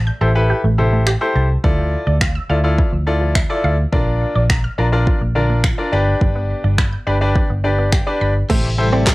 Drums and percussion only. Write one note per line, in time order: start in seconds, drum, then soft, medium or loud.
1.07 finger snap loud
1.64 kick loud
2.21 finger snap loud
2.21 kick loud
2.78 kick loud
3.35 finger snap loud
3.35 kick loud
3.93 kick loud
4.50 finger snap loud
4.50 kick loud
5.07 kick loud
5.64 finger snap loud
5.64 kick loud
6.21 kick loud
6.78 finger snap loud
6.78 kick loud
7.36 kick loud
7.92 finger snap loud
7.92 kick loud
8.50 kick loud
8.50 crash loud
9.07 kick loud
9.07 snare medium
9.07 clap loud